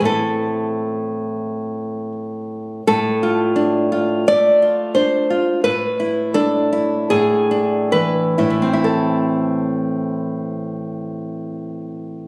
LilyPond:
\new Staff \with { instrumentName = "Nylon-string guitar" } { \time 4/4 \key a \minor \tempo 4 = 83 << { a'2. r4 | a'2 d''4 c''4 | b'4 a'4 gis'4 b'4 | <a, e c' e' a'>1 | } \\ { <a, c' e'>1 | a,8 f'8 d'8 f'8 a8 f'8 d'8 f'8 | a,8 e'8 d'8 e'8 a,8 d'8 e8 e'8 | r1 | } >> }